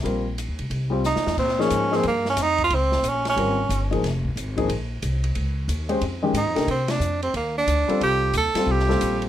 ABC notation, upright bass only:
X:1
M:4/4
L:1/8
Q:"Swing" 1/4=181
K:Cm
V:1 name="Upright bass" clef=bass
B,,,2- (3B,,, E,, C,, C,,2- (3C,, E,, F,, | [K:Bbdor] B,,2 A,,2 G,,2 F,,2 | D,,2 B,,,2 A,,,2 G,,,2 | F,,,2 A,,,2 B,,,2 C,,2 |
D,,2 E,,2 F,,2 (3A,, F,, D,, | C,2 F,,2 E,,2 =D,, z | C,,2 E,, z C,,2 B,,,2 |]